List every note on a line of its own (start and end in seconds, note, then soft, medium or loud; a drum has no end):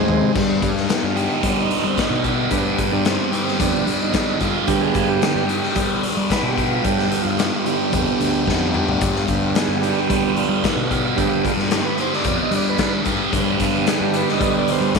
0.00 0.32 G#3 medium
0.00 0.32 C4 medium
0.00 0.32 D#4 medium
0.00 0.32 G#4 medium
0.00 0.32 C5 medium
0.06 0.20 D#2 medium
0.06 0.33 G#2 medium
0.06 0.34 D#3 medium
0.06 0.35 G#3 medium
0.06 floor tom medium
0.22 0.34 C3 medium
0.35 2.51 G2 medium
0.35 0.59 G2 medium
0.35 0.72 D3 medium
0.35 0.72 G3 medium
0.35 0.72 B3 medium
0.35 kick loud
0.35 crash medium
0.62 0.86 G2 medium
0.62 kick medium
0.62 closed hi-hat medium
0.77 snare soft
0.89 1.42 B3 medium
0.89 1.04 G4 medium
0.89 snare loud
0.89 closed hi-hat medium
1.03 1.27 G2 medium
1.03 1.16 F4 medium
1.16 2.24 G4 medium
1.16 closed hi-hat medium
1.32 1.45 D#4 medium
1.42 1.67 G3 medium
1.42 1.96 B3 medium
1.42 kick loud
1.42 closed hi-hat medium
1.47 1.58 D4 medium
1.60 1.86 D#4 medium
1.70 3.86 D4 medium
1.70 closed hi-hat medium
1.84 1.96 G3 medium
1.88 1.99 C4 medium
1.97 3.04 B3 medium
1.97 2.25 D#4 medium
1.97 kick medium
1.97 snare loud
1.97 closed hi-hat medium
2.10 2.46 B2 medium
2.24 3.32 G4 medium
2.24 kick medium
2.24 closed hi-hat medium
2.28 2.34 D4 medium
2.40 2.50 B3 medium
2.51 2.75 G2 loud
2.51 4.68 G2 medium
2.51 3.60 G3 medium
2.51 2.65 B3 medium
2.51 2.67 D4 medium
2.51 kick loud
2.51 closed hi-hat medium
2.66 2.94 B3 medium
2.78 kick medium
2.78 closed hi-hat medium
2.92 3.16 G2 medium
2.92 3.06 D4 loud
3.04 3.59 B3 medium
3.04 3.31 C4 medium
3.04 snare loud
3.04 closed hi-hat medium
3.32 3.46 B3 medium
3.32 4.41 G4 medium
3.32 closed hi-hat medium
3.43 3.58 C4 medium
3.48 snare soft
3.59 3.72 F2 medium
3.59 3.85 D3 soft
3.59 3.85 G3 soft
3.59 4.13 B3 medium
3.59 3.86 B3 soft
3.59 3.99 D4 medium
3.59 kick loud
3.59 closed hi-hat loud
3.86 4.11 G3 medium
3.86 6.03 D4 medium
3.86 closed hi-hat medium
4.02 4.39 D#4 medium
4.13 4.38 G3 loud
4.13 5.23 B3 medium
4.13 kick medium
4.13 snare loud
4.13 closed hi-hat medium
4.40 4.53 G2 medium
4.40 4.69 F4 medium
4.40 5.49 G4 medium
4.40 kick medium
4.40 closed hi-hat medium
4.67 4.92 G2 medium
4.67 6.84 G2 medium
4.67 5.45 D3 medium
4.67 5.45 G3 medium
4.67 5.45 B3 medium
4.67 4.82 G4 loud
4.67 kick medium
4.67 closed hi-hat loud
4.81 5.09 G#4 loud
4.94 5.19 G2 medium
4.94 kick medium
4.94 closed hi-hat medium
5.10 5.87 G4 loud
5.22 5.76 B3 medium
5.22 snare loud
5.22 closed hi-hat loud
5.35 5.59 G2 medium
5.49 6.57 G4 medium
5.49 closed hi-hat medium
5.63 snare soft
5.75 6.00 G3 loud
5.75 6.30 B3 medium
5.75 kick loud
5.75 closed hi-hat medium
6.03 8.20 D4 medium
6.03 closed hi-hat medium
6.17 6.29 G3 medium
6.30 7.39 B3 medium
6.30 6.50 B4 loud
6.30 kick medium
6.30 snare medium
6.30 closed hi-hat medium
6.43 6.79 B2 loud
6.48 6.65 G4 medium
6.57 7.66 G4 medium
6.57 kick medium
6.57 closed hi-hat medium
6.68 6.84 F4 medium
6.84 7.08 G2 medium
6.84 9.01 G2 medium
6.84 7.23 G4 loud
6.84 kick loud
6.84 closed hi-hat medium
6.99 snare soft
7.11 closed hi-hat medium
7.22 7.49 G2 medium
7.22 7.59 F4 medium
7.39 7.93 B3 medium
7.39 snare loud
7.39 closed hi-hat medium
7.59 8.89 G4 medium
7.65 8.43 D3 medium
7.65 8.43 G3 medium
7.65 8.44 B3 medium
7.65 8.74 G4 medium
7.65 closed hi-hat medium
7.92 8.05 F2 medium
7.92 8.47 B3 medium
7.92 kick loud
7.92 closed hi-hat medium
8.20 8.44 D2 medium
8.20 10.37 D4 medium
8.20 closed hi-hat medium
8.46 8.72 F2 medium
8.46 8.71 D3 soft
8.46 8.71 G3 soft
8.46 8.72 B3 medium
8.46 9.56 B3 medium
8.46 kick medium
8.46 snare medium
8.74 8.98 G2 medium
8.74 9.84 G4 medium
8.74 mid tom medium
8.88 floor tom loud
9.01 9.25 G2 medium
9.01 11.18 G2 medium
9.01 kick loud
9.01 closed hi-hat medium
9.16 snare soft
9.28 9.52 G2 medium
9.28 10.62 D3 medium
9.28 10.61 G3 soft
9.28 10.63 B3 medium
9.28 kick medium
9.28 closed hi-hat medium
9.55 10.11 B3 medium
9.55 9.83 G#4 medium
9.55 snare loud
9.55 closed hi-hat medium
9.67 9.92 G2 medium
9.81 10.32 G4 medium
9.81 10.91 G4 medium
9.81 closed hi-hat medium
10.09 10.33 G3 loud
10.09 10.64 B3 medium
10.09 kick loud
10.09 closed hi-hat medium
10.37 12.53 D4 medium
10.37 11.14 F4 medium
10.37 closed hi-hat medium
10.49 10.61 G3 medium
10.62 10.88 D3 soft
10.62 10.87 G3 soft
10.62 11.72 B3 medium
10.62 10.88 B3 medium
10.62 kick medium
10.62 snare loud
10.62 closed hi-hat medium
10.76 11.13 B2 medium
10.91 11.99 G4 medium
10.91 kick medium
10.91 closed hi-hat medium
11.16 11.42 G2 medium
11.16 13.33 G2 medium
11.16 11.53 D3 medium
11.16 11.53 G3 medium
11.16 11.53 B3 medium
11.16 11.45 G4 loud
11.16 kick loud
11.16 closed hi-hat medium
11.44 11.56 F4 medium
11.44 kick medium
11.44 closed hi-hat medium
11.57 11.81 G2 medium
11.57 snare soft
11.71 12.25 B3 medium
11.71 11.86 G4 medium
11.71 snare loud
11.71 closed hi-hat medium
11.85 11.99 B4 loud
11.98 13.06 G4 medium
11.98 12.14 C5 loud
11.98 closed hi-hat medium
12.13 12.39 D5 medium
12.13 snare soft
12.24 12.37 F2 medium
12.24 12.80 B3 medium
12.24 kick loud
12.24 closed hi-hat medium
12.43 12.54 D#5 loud
12.51 12.75 G3 medium
12.51 14.68 D4 medium
12.51 closed hi-hat medium
12.56 12.67 D5 medium
12.69 12.93 B4 medium
12.78 13.03 G3 medium
12.78 13.87 B3 medium
12.78 kick medium
12.78 snare loud
12.78 closed hi-hat medium
13.05 13.18 G2 medium
13.05 14.14 G4 medium
13.05 kick medium
13.05 closed hi-hat medium
13.33 13.57 G2 loud
13.33 14.99 G2 medium
13.33 14.70 D3 medium
13.33 14.70 G3 medium
13.33 14.71 B3 medium
13.33 kick loud
13.33 closed hi-hat medium
13.60 13.84 G2 medium
13.60 kick medium
13.60 closed hi-hat medium
13.87 14.41 B3 medium
13.87 14.01 G#4 medium
13.87 snare loud
13.87 closed hi-hat medium
14.00 14.24 G2 medium
14.00 14.16 G4 medium
14.14 14.99 G4 medium
14.14 14.29 B4 loud
14.14 closed hi-hat medium
14.29 14.54 D#5 loud
14.29 snare soft
14.40 14.64 G3 loud
14.40 14.94 B3 medium
14.40 kick loud
14.40 closed hi-hat medium
14.58 14.70 D5 loud
14.68 14.94 D3 soft
14.68 14.94 G3 soft
14.68 14.99 D4 medium
14.68 closed hi-hat medium
14.72 14.94 B3 medium
14.72 14.95 C5 loud
14.81 14.93 G3 medium
14.95 14.99 B3 medium
14.95 kick medium
14.95 snare loud
14.95 closed hi-hat medium